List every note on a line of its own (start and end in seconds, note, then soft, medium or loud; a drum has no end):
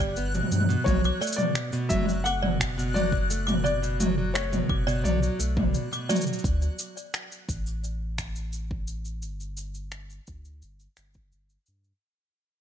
0.00 0.17 G1 medium
0.00 0.16 G3 medium
0.00 0.47 G5 medium
0.00 6.46 F#6 medium
0.16 0.42 G1 medium
0.16 0.33 B3 medium
0.16 shaker soft
0.34 0.67 B2 medium
0.34 mid tom soft
0.34 shaker soft
0.43 mid tom soft
0.52 0.76 G2 medium
0.52 mid tom medium
0.52 shaker medium
0.60 mid tom medium
0.69 0.85 B2 loud
0.69 shaker soft
0.84 1.11 B1 loud
0.84 1.03 F#3 medium
0.84 1.34 C#5 loud
0.84 kick loud
0.84 mid tom medium
0.84 shaker soft
0.91 mid tom medium
0.95 mid tom medium
1.00 mid tom soft
1.04 1.21 F#3 medium
1.04 1.21 D6 medium
1.04 shaker soft
1.21 1.37 A3 medium
1.21 1.31 D5 loud
1.21 shaker soft
1.27 shaker soft
1.32 1.91 D5 medium
1.32 shaker medium
1.38 1.72 B2 medium
1.38 mid tom medium
1.38 shaker soft
1.55 finger snap medium
1.55 shaker soft
1.73 1.90 B2 loud
1.73 shaker soft
1.89 4.62 F#1 medium
1.89 2.07 F#3 loud
1.89 2.26 E5 loud
1.89 kick medium
1.89 mid tom soft
1.89 shaker medium
1.92 mid tom soft
1.95 mid tom soft
1.98 mid tom medium
2.00 mid tom medium
2.04 mid tom medium
2.06 2.25 F#3 medium
2.06 mid tom medium
2.06 shaker soft
2.24 2.42 A3 medium
2.24 2.97 F#5 loud
2.24 2.42 D6 medium
2.24 shaker soft
2.42 2.76 B2 medium
2.42 2.53 D5 loud
2.42 mid tom medium
2.60 finger snap medium
2.60 kick medium
2.60 shaker medium
2.78 2.95 B2 loud
2.78 shaker soft
2.94 3.12 F#3 loud
2.94 3.62 D5 loud
2.94 mid tom medium
2.94 shaker soft
3.12 3.30 F#3 medium
3.12 kick loud
3.31 3.46 A3 medium
3.31 shaker medium
3.47 3.81 B2 medium
3.47 3.64 D6 medium
3.47 mid tom medium
3.47 shaker soft
3.64 4.36 D5 loud
3.64 3.75 D5 medium
3.64 shaker soft
3.82 3.99 B2 loud
3.82 shaker soft
4.00 4.17 F#3 loud
4.00 mid tom medium
4.00 shaker medium
4.18 4.34 F#3 medium
4.34 4.51 A3 medium
4.34 5.06 C#5 medium
4.34 finger snap medium
4.34 shaker soft
4.52 4.86 B2 medium
4.52 mid tom medium
4.52 shaker soft
4.69 5.04 F#1 medium
4.69 4.86 D6 medium
4.69 kick loud
4.87 5.04 B2 loud
4.87 4.97 D5 loud
4.87 shaker soft
5.04 5.29 B1 loud
5.04 5.21 F#3 loud
5.04 6.05 D5 medium
5.04 mid tom medium
5.04 shaker soft
5.22 5.39 F#3 medium
5.22 shaker soft
5.39 5.75 B1 medium
5.39 5.55 A3 medium
5.39 shaker medium
5.57 5.90 B2 medium
5.57 kick loud
5.57 mid tom medium
5.74 shaker soft
5.92 6.08 B2 medium
5.92 6.09 D6 medium
5.92 shaker soft
6.09 6.25 F#3 loud
6.09 6.19 D5 loud
6.09 mid tom medium
6.09 shaker medium
6.16 shaker medium
6.21 shaker medium
6.27 6.43 F#3 medium
6.27 shaker soft
6.33 shaker soft
6.38 shaker soft
6.44 6.69 D2 medium
6.44 kick loud
6.44 shaker soft
6.62 shaker soft
6.79 shaker medium
6.97 shaker soft
7.14 finger snap medium
7.14 shaker soft
7.32 shaker soft
7.49 9.25 A1 medium
7.49 kick medium
7.49 shaker medium
7.67 shaker soft
7.84 shaker soft
8.18 finger snap medium
8.18 kick medium
8.18 shaker medium
8.36 shaker soft
8.53 shaker soft
8.71 kick loud
8.88 shaker medium
9.05 shaker soft
9.22 10.20 G1 medium
9.22 shaker soft
9.40 shaker soft
9.57 shaker medium
9.74 shaker soft
9.92 finger snap medium
9.92 shaker soft
10.10 shaker soft
10.27 10.62 D2 medium
10.27 kick medium
10.27 shaker medium
10.45 shaker soft
10.62 10.88 G1 medium
10.62 shaker soft
10.80 shaker soft
10.97 11.32 G1 medium
10.97 finger snap medium
10.97 shaker medium
11.14 kick medium
11.14 shaker soft
11.32 11.57 G1 medium
11.32 shaker soft
11.50 shaker soft
11.66 11.93 G2 medium
11.66 shaker medium
11.84 shaker soft